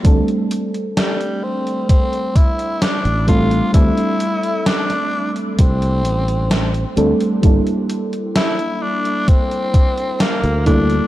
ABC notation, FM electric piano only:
X:1
M:4/4
L:1/8
Q:1/4=65
K:Dm
V:1 name="FM electric piano"
[G,A,CDA]6- [G,A,CDA] [G,A,CDA] | [G,A,CDA]6- [G,A,CDA] [G,A,CDA] | [G,B,DEA]6- [G,B,DEA] [G,B,DEA] |]